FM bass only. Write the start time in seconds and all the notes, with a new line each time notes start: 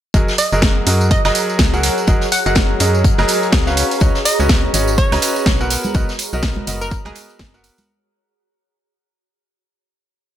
0.14 F#1
0.53 F#1
0.87 F#2
1.25 F#1
1.59 C#2
2.08 F#1
2.46 F#1
2.80 F#2
3.19 F#1
3.53 C#2
4.01 C#2
4.40 C#2
4.74 G#1
5.12 C#2
5.46 B1
5.95 B1
6.33 B1
6.67 F#1
7.06 B1
7.40 F#1